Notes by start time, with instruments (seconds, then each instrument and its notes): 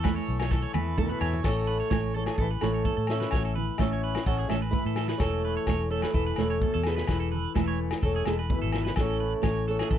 Already playing: fingered electric bass E2, clean electric guitar E3 A3 E4, transistor combo organ E5 A5 C#6
0.04 clean electric guitar A4 B4, kick, snare, muted conga, high conga, low agogo
0.16 clean electric guitar C#5
0.29 fingered electric bass B1, clean electric guitar A3
0.40 clean electric guitar C#5, snare, low agogo
0.51 clean electric guitar A4, kick, snare, muted conga, low conga
0.62 clean electric guitar C#5
0.74 fingered electric bass E2, clean electric guitar B4, high tom, muted conga, high conga, low conga, low agogo
0.78 clean electric guitar E4
0.98 clean electric guitar B2 A4, steel-string acoustic guitar E4 B4, kick, mid tom, high conga
1.02 trombone E3
1.09 clean electric guitar B4, mid tom
1.21 fingered electric bass E2, clean electric guitar A4 C#5, floor tom, low agogo
1.33 floor tom
1.44 fingered electric bass A1, clean electric guitar A2 A4, trombone A3, steel-string acoustic guitar A4 C#5, kick, snare, crash, muted conga, low agogo
1.48 clean electric guitar A4
1.67 clean electric guitar E4 B4, muted conga
1.80 clean electric guitar C#5
1.90 fingered electric bass A1, clean electric guitar C#5, kick, snare, high conga, low agogo
2.14 clean electric guitar E3 A4, trombone A3, steel-string acoustic guitar A4 C#5, muted conga
2.26 clean electric guitar G#4, snare, low agogo
2.38 fingered electric bass A1, trombone E3, steel-string acoustic guitar E4 B4, clean electric guitar A4, kick
2.51 clean electric guitar B4
2.61 fingered electric bass A1, steel-string acoustic guitar A4 C#5, snare, muted conga, high conga, low agogo
2.65 trombone A3
2.74 clean electric guitar C#5
2.85 clean electric guitar A4, muted clean electric guitar stroke, kick, high conga
2.97 fingered electric bass A2, clean electric guitar A4
3.07 steel-string acoustic guitar C#5 E5, snare, low agogo
3.13 trombone C#4
3.20 clean electric guitar B4, snare
3.31 fingered electric bass A1, clean electric guitar A2 F#4 C#5, kick, snare, muted conga, low agogo
3.45 clean electric guitar A4
3.55 clean electric guitar E4 B4, muted conga, low conga
3.78 fingered electric bass A1, trombone C#4, clean electric guitar A4, steel-string acoustic guitar C#5 E5, kick, snare, high conga, low agogo
3.93 clean electric guitar C#5
4.04 clean electric guitar B4, muted conga
4.15 snare, low agogo
4.26 fingered electric bass A1, trombone C#4, clean electric guitar A4, steel-string acoustic guitar C#5 F#5, kick
4.39 clean electric guitar G#4
4.49 fingered electric bass A1, trombone C#4, clean electric guitar A4, steel-string acoustic guitar C#5 E5, snare, muted conga, high conga, low agogo
4.62 clean electric guitar B4
4.71 clean electric guitar A2, steel-string acoustic guitar E4 B4, kick, high conga
4.75 trombone E3
4.85 fingered electric bass A2, clean electric guitar A4
4.96 clean electric guitar A4, snare, low agogo
5.08 clean electric guitar B4, snare
5.18 fingered electric bass E1, clean electric guitar E3 A4, steel-string acoustic guitar A4 C#5, kick, snare, muted conga, low agogo
5.24 trombone A3
5.44 clean electric guitar A4 B4, muted conga
5.57 clean electric guitar C#5
5.67 fingered electric bass E1, clean electric guitar C#5, kick, snare, high conga, low agogo
5.90 clean electric guitar A3 A4, steel-string acoustic guitar A4 C#5, muted conga
5.95 trombone A3
6.02 clean electric guitar B4, snare, low agogo
6.14 fingered electric bass E1, trombone E3, steel-string acoustic guitar E4 B4, clean electric guitar A4, kick
6.26 clean electric guitar B4
6.36 fingered electric bass E1, steel-string acoustic guitar A4 C#5, snare, muted conga, high conga, low agogo
6.41 trombone A3
6.50 clean electric guitar C#5
6.61 clean electric guitar B2 A4, kick, high conga
6.74 fingered electric bass E2, clean electric guitar A4
6.83 steel-string acoustic guitar G#4 B4, snare, low agogo
6.89 trombone E3
6.96 clean electric guitar B4, snare
7.07 fingered electric bass E1, clean electric guitar E3 A4 B4, kick, snare, muted conga, low agogo
7.20 clean electric guitar A4
7.32 clean electric guitar A4 B4, muted conga, low conga
7.55 fingered electric bass E1, steel-string acoustic guitar E4 B4, clean electric guitar A4, kick, snare, high conga, low agogo
7.59 trombone E3
7.68 clean electric guitar C#5
7.79 clean electric guitar A3, muted conga
7.91 snare, low agogo
8.03 fingered electric bass E1, clean electric guitar A4, steel-string acoustic guitar A4 C#5, kick
8.08 trombone A3
8.16 clean electric guitar G#4
8.25 fingered electric bass E1, steel-string acoustic guitar G#4 B4, clean electric guitar A4, snare, muted conga, high conga, low agogo
8.31 trombone G#3
8.39 clean electric guitar B4
8.50 clean electric guitar B2, steel-string acoustic guitar E4 B4, kick, high conga
8.55 trombone E3
8.62 fingered electric bass G#1, clean electric guitar A4
8.72 clean electric guitar A4, snare, low agogo
8.85 clean electric guitar B4, snare
8.96 fingered electric bass A1, clean electric guitar A2 E3 C#4 A4, steel-string acoustic guitar A4, kick, snare, muted conga, low agogo
9.00 trombone A3, clean electric guitar E4 A4, steel-string acoustic guitar C#5
9.20 clean electric guitar E4 B4, muted conga
9.43 fingered electric bass A1, clean electric guitar C#5, kick, snare, high conga, low agogo
9.67 clean electric guitar E3 A4, steel-string acoustic guitar A4 C#5, muted conga
9.73 trombone A3
9.79 clean electric guitar G#4, snare, low agogo
9.91 fingered electric bass A1, steel-string acoustic guitar E4 B4, clean electric guitar A4, kick